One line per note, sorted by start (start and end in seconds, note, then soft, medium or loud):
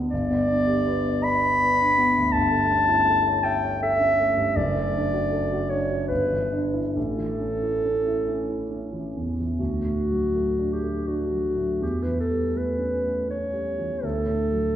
0.00 0.14 D2 medium
0.00 0.14 D3 medium
0.00 0.14 B3 soft
0.00 0.14 D4 medium
0.00 0.14 F#4 soft
0.11 2.30 G1 medium
0.11 1.25 D5 loud
0.30 0.58 B3 medium
0.48 0.77 D4 medium
0.67 0.98 G4 medium
0.87 1.18 B4 medium
1.09 1.38 D5 medium
1.24 1.55 B4 medium
1.24 2.34 B5 loud
1.63 1.91 B4 medium
1.81 2.09 D4 soft
1.98 2.27 B3 medium
2.16 2.34 D2 medium
2.32 4.52 G1 medium
2.32 3.46 A5 loud
2.51 2.81 A3 medium
2.71 3.00 C#4 medium
2.89 3.18 E4 medium
3.08 3.37 A4 medium
3.27 3.56 C#5 medium
3.44 3.74 E5 medium
3.44 3.82 G5 loud
3.63 3.93 C#5 medium
3.82 4.12 A4 medium
3.82 4.58 E5 loud
3.99 4.29 C#4 medium
4.19 4.49 A3 medium
4.36 4.55 G2 medium
4.56 6.06 F#1 medium
4.56 5.71 D5 loud
4.75 5.05 A3 medium
4.95 5.24 D4 medium
5.13 5.43 F#4 medium
5.31 5.62 A4 medium
5.52 5.83 F#4 medium
5.70 6.02 D4 medium
5.70 6.07 C#5 medium
5.90 6.10 F#4 medium
6.08 6.93 G1 medium
6.08 6.62 B4 medium
6.31 6.65 E3 soft
6.53 6.87 D4 medium
6.74 6.96 E4 soft
6.95 9.55 A1 medium
6.95 9.13 A4 medium
7.18 7.54 E3 soft
7.40 7.76 C#4 soft
7.63 7.98 E4 soft
7.84 8.20 C#4 soft
8.07 8.42 E4 soft
8.28 8.63 C#4 soft
8.49 8.85 E4 soft
8.71 9.07 C#4 soft
8.93 9.29 E3 soft
9.17 9.51 E2 soft
9.39 9.59 E3 soft
9.59 11.78 D2 soft
9.59 10.75 F#4 medium
9.85 10.25 A2 soft
10.10 10.50 F#3 soft
10.35 10.74 A3 soft
10.59 10.98 D4 soft
10.73 11.08 G4 medium
10.83 11.22 A3 soft
11.07 11.47 D4 soft
11.07 11.81 F#4 medium
11.32 11.72 F#3 soft
11.56 11.82 A2 soft
11.81 13.99 E2 medium
11.81 12.04 G4 medium
12.03 12.46 E3 soft
12.03 12.20 B4 medium
12.20 12.59 A4 medium
12.30 12.70 G3 soft
12.55 12.94 A3 soft
12.55 13.30 B4 medium
12.78 13.19 C#4 soft
13.03 13.43 A3 soft
13.28 13.69 C#4 soft
13.28 14.07 C#5 medium
13.52 13.93 G3 soft
13.79 14.03 E3 soft
14.03 14.76 D2 medium
14.03 14.76 A4 medium
14.27 14.65 A2 soft
14.52 14.76 F#3 soft